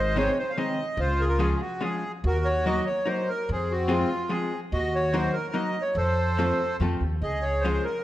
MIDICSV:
0, 0, Header, 1, 4, 480
1, 0, Start_track
1, 0, Tempo, 416378
1, 1126, Time_signature, 3, 2, 24, 8
1, 9267, End_track
2, 0, Start_track
2, 0, Title_t, "Accordion"
2, 0, Program_c, 0, 21
2, 0, Note_on_c, 0, 72, 89
2, 0, Note_on_c, 0, 75, 99
2, 197, Note_off_c, 0, 75, 0
2, 201, Note_on_c, 0, 73, 118
2, 364, Note_off_c, 0, 72, 0
2, 436, Note_off_c, 0, 73, 0
2, 448, Note_on_c, 0, 72, 101
2, 577, Note_on_c, 0, 77, 78
2, 592, Note_off_c, 0, 72, 0
2, 652, Note_off_c, 0, 77, 0
2, 662, Note_on_c, 0, 75, 96
2, 1136, Note_on_c, 0, 65, 69
2, 1147, Note_off_c, 0, 75, 0
2, 1155, Note_on_c, 0, 72, 99
2, 1382, Note_on_c, 0, 70, 102
2, 1391, Note_off_c, 0, 72, 0
2, 1405, Note_on_c, 0, 68, 73
2, 1437, Note_off_c, 0, 70, 0
2, 1476, Note_off_c, 0, 68, 0
2, 1484, Note_on_c, 0, 70, 90
2, 1605, Note_on_c, 0, 68, 96
2, 1610, Note_off_c, 0, 70, 0
2, 1777, Note_off_c, 0, 68, 0
2, 1795, Note_on_c, 0, 68, 56
2, 1815, Note_off_c, 0, 65, 0
2, 1849, Note_on_c, 0, 66, 79
2, 1856, Note_off_c, 0, 68, 0
2, 2100, Note_off_c, 0, 66, 0
2, 2105, Note_on_c, 0, 68, 89
2, 2444, Note_off_c, 0, 68, 0
2, 2607, Note_on_c, 0, 66, 72
2, 2623, Note_on_c, 0, 70, 98
2, 2826, Note_on_c, 0, 73, 96
2, 2859, Note_off_c, 0, 70, 0
2, 3051, Note_off_c, 0, 73, 0
2, 3073, Note_on_c, 0, 75, 113
2, 3281, Note_off_c, 0, 66, 0
2, 3301, Note_on_c, 0, 73, 89
2, 3324, Note_off_c, 0, 75, 0
2, 3544, Note_on_c, 0, 72, 89
2, 3551, Note_off_c, 0, 73, 0
2, 3792, Note_on_c, 0, 70, 98
2, 3797, Note_off_c, 0, 72, 0
2, 4035, Note_off_c, 0, 70, 0
2, 4055, Note_on_c, 0, 68, 87
2, 4057, Note_on_c, 0, 60, 70
2, 4279, Note_on_c, 0, 66, 94
2, 4291, Note_off_c, 0, 68, 0
2, 4495, Note_on_c, 0, 65, 105
2, 4517, Note_off_c, 0, 66, 0
2, 4716, Note_off_c, 0, 60, 0
2, 4968, Note_on_c, 0, 68, 90
2, 4989, Note_off_c, 0, 65, 0
2, 5305, Note_off_c, 0, 68, 0
2, 5453, Note_on_c, 0, 75, 102
2, 5455, Note_on_c, 0, 66, 88
2, 5703, Note_off_c, 0, 75, 0
2, 5711, Note_on_c, 0, 73, 97
2, 5904, Note_on_c, 0, 72, 97
2, 5945, Note_off_c, 0, 73, 0
2, 6125, Note_off_c, 0, 66, 0
2, 6147, Note_on_c, 0, 70, 90
2, 6165, Note_off_c, 0, 72, 0
2, 6384, Note_on_c, 0, 75, 92
2, 6399, Note_off_c, 0, 70, 0
2, 6704, Note_on_c, 0, 73, 91
2, 6721, Note_off_c, 0, 75, 0
2, 6877, Note_on_c, 0, 69, 78
2, 6878, Note_off_c, 0, 73, 0
2, 6890, Note_on_c, 0, 72, 92
2, 7796, Note_off_c, 0, 69, 0
2, 7802, Note_off_c, 0, 72, 0
2, 8331, Note_on_c, 0, 75, 90
2, 8340, Note_on_c, 0, 68, 77
2, 8552, Note_on_c, 0, 73, 91
2, 8582, Note_off_c, 0, 75, 0
2, 8771, Note_on_c, 0, 72, 91
2, 8807, Note_off_c, 0, 73, 0
2, 9015, Note_off_c, 0, 68, 0
2, 9039, Note_on_c, 0, 70, 90
2, 9043, Note_off_c, 0, 72, 0
2, 9267, Note_off_c, 0, 70, 0
2, 9267, End_track
3, 0, Start_track
3, 0, Title_t, "Hollow-body jazz guitar"
3, 0, Program_c, 1, 26
3, 181, Note_on_c, 1, 51, 82
3, 189, Note_on_c, 1, 56, 70
3, 190, Note_on_c, 1, 60, 72
3, 196, Note_on_c, 1, 63, 72
3, 205, Note_on_c, 1, 68, 78
3, 422, Note_off_c, 1, 51, 0
3, 422, Note_off_c, 1, 60, 0
3, 422, Note_off_c, 1, 63, 0
3, 423, Note_off_c, 1, 56, 0
3, 423, Note_off_c, 1, 68, 0
3, 662, Note_on_c, 1, 51, 63
3, 665, Note_on_c, 1, 56, 60
3, 666, Note_on_c, 1, 60, 59
3, 669, Note_on_c, 1, 68, 54
3, 673, Note_on_c, 1, 63, 49
3, 898, Note_off_c, 1, 68, 0
3, 899, Note_off_c, 1, 60, 0
3, 900, Note_off_c, 1, 51, 0
3, 901, Note_off_c, 1, 56, 0
3, 901, Note_off_c, 1, 63, 0
3, 1603, Note_on_c, 1, 56, 70
3, 1610, Note_on_c, 1, 53, 80
3, 1612, Note_on_c, 1, 65, 57
3, 1614, Note_on_c, 1, 68, 73
3, 1620, Note_on_c, 1, 61, 59
3, 1855, Note_off_c, 1, 56, 0
3, 1855, Note_off_c, 1, 68, 0
3, 1857, Note_off_c, 1, 65, 0
3, 1858, Note_off_c, 1, 53, 0
3, 1860, Note_off_c, 1, 61, 0
3, 2082, Note_on_c, 1, 56, 60
3, 2084, Note_on_c, 1, 61, 60
3, 2090, Note_on_c, 1, 53, 63
3, 2096, Note_on_c, 1, 65, 52
3, 2101, Note_on_c, 1, 68, 65
3, 2338, Note_off_c, 1, 61, 0
3, 2339, Note_off_c, 1, 65, 0
3, 2339, Note_off_c, 1, 68, 0
3, 2340, Note_off_c, 1, 56, 0
3, 2341, Note_off_c, 1, 53, 0
3, 3065, Note_on_c, 1, 54, 76
3, 3069, Note_on_c, 1, 63, 62
3, 3074, Note_on_c, 1, 58, 69
3, 3076, Note_on_c, 1, 66, 73
3, 3078, Note_on_c, 1, 70, 75
3, 3313, Note_off_c, 1, 70, 0
3, 3314, Note_off_c, 1, 54, 0
3, 3315, Note_off_c, 1, 63, 0
3, 3315, Note_off_c, 1, 66, 0
3, 3317, Note_off_c, 1, 58, 0
3, 3522, Note_on_c, 1, 63, 57
3, 3532, Note_on_c, 1, 66, 55
3, 3535, Note_on_c, 1, 54, 60
3, 3539, Note_on_c, 1, 70, 62
3, 3542, Note_on_c, 1, 58, 52
3, 3781, Note_off_c, 1, 63, 0
3, 3782, Note_off_c, 1, 70, 0
3, 3783, Note_off_c, 1, 66, 0
3, 3786, Note_off_c, 1, 54, 0
3, 3786, Note_off_c, 1, 58, 0
3, 4474, Note_on_c, 1, 60, 75
3, 4478, Note_on_c, 1, 65, 66
3, 4482, Note_on_c, 1, 53, 76
3, 4487, Note_on_c, 1, 56, 68
3, 4488, Note_on_c, 1, 68, 76
3, 4733, Note_off_c, 1, 65, 0
3, 4734, Note_off_c, 1, 60, 0
3, 4735, Note_off_c, 1, 68, 0
3, 4736, Note_off_c, 1, 53, 0
3, 4736, Note_off_c, 1, 56, 0
3, 4949, Note_on_c, 1, 56, 61
3, 4954, Note_on_c, 1, 53, 61
3, 4957, Note_on_c, 1, 60, 52
3, 4960, Note_on_c, 1, 65, 59
3, 4971, Note_on_c, 1, 68, 65
3, 5206, Note_off_c, 1, 56, 0
3, 5206, Note_off_c, 1, 60, 0
3, 5208, Note_off_c, 1, 65, 0
3, 5209, Note_off_c, 1, 53, 0
3, 5210, Note_off_c, 1, 68, 0
3, 5922, Note_on_c, 1, 54, 81
3, 5922, Note_on_c, 1, 63, 75
3, 5925, Note_on_c, 1, 58, 61
3, 5927, Note_on_c, 1, 66, 68
3, 5934, Note_on_c, 1, 70, 83
3, 6165, Note_off_c, 1, 58, 0
3, 6167, Note_off_c, 1, 54, 0
3, 6168, Note_off_c, 1, 63, 0
3, 6168, Note_off_c, 1, 66, 0
3, 6169, Note_off_c, 1, 70, 0
3, 6383, Note_on_c, 1, 63, 64
3, 6387, Note_on_c, 1, 54, 69
3, 6390, Note_on_c, 1, 58, 61
3, 6397, Note_on_c, 1, 66, 50
3, 6402, Note_on_c, 1, 70, 71
3, 6635, Note_off_c, 1, 63, 0
3, 6638, Note_off_c, 1, 58, 0
3, 6639, Note_off_c, 1, 54, 0
3, 6639, Note_off_c, 1, 66, 0
3, 6639, Note_off_c, 1, 70, 0
3, 7360, Note_on_c, 1, 53, 82
3, 7363, Note_on_c, 1, 60, 70
3, 7366, Note_on_c, 1, 57, 63
3, 7370, Note_on_c, 1, 65, 59
3, 7371, Note_on_c, 1, 69, 86
3, 7606, Note_off_c, 1, 57, 0
3, 7607, Note_off_c, 1, 53, 0
3, 7609, Note_off_c, 1, 60, 0
3, 7609, Note_off_c, 1, 65, 0
3, 7611, Note_off_c, 1, 69, 0
3, 7846, Note_on_c, 1, 53, 78
3, 7854, Note_on_c, 1, 57, 73
3, 7857, Note_on_c, 1, 60, 62
3, 7862, Note_on_c, 1, 65, 58
3, 7866, Note_on_c, 1, 69, 76
3, 8093, Note_off_c, 1, 53, 0
3, 8093, Note_off_c, 1, 65, 0
3, 8093, Note_off_c, 1, 69, 0
3, 8094, Note_off_c, 1, 57, 0
3, 8095, Note_off_c, 1, 60, 0
3, 8812, Note_on_c, 1, 53, 69
3, 8817, Note_on_c, 1, 61, 77
3, 8820, Note_on_c, 1, 65, 61
3, 8825, Note_on_c, 1, 56, 72
3, 8825, Note_on_c, 1, 68, 69
3, 9056, Note_off_c, 1, 53, 0
3, 9057, Note_off_c, 1, 65, 0
3, 9059, Note_off_c, 1, 61, 0
3, 9060, Note_off_c, 1, 68, 0
3, 9062, Note_off_c, 1, 56, 0
3, 9267, End_track
4, 0, Start_track
4, 0, Title_t, "Upright bass"
4, 0, Program_c, 2, 32
4, 0, Note_on_c, 2, 32, 95
4, 311, Note_off_c, 2, 32, 0
4, 1119, Note_on_c, 2, 37, 100
4, 1752, Note_off_c, 2, 37, 0
4, 2580, Note_on_c, 2, 39, 104
4, 3210, Note_off_c, 2, 39, 0
4, 4022, Note_on_c, 2, 41, 93
4, 4642, Note_off_c, 2, 41, 0
4, 5443, Note_on_c, 2, 39, 98
4, 6064, Note_off_c, 2, 39, 0
4, 6857, Note_on_c, 2, 41, 96
4, 7491, Note_off_c, 2, 41, 0
4, 7835, Note_on_c, 2, 41, 88
4, 8059, Note_off_c, 2, 41, 0
4, 8076, Note_on_c, 2, 39, 72
4, 8296, Note_off_c, 2, 39, 0
4, 8318, Note_on_c, 2, 37, 88
4, 8948, Note_off_c, 2, 37, 0
4, 9267, End_track
0, 0, End_of_file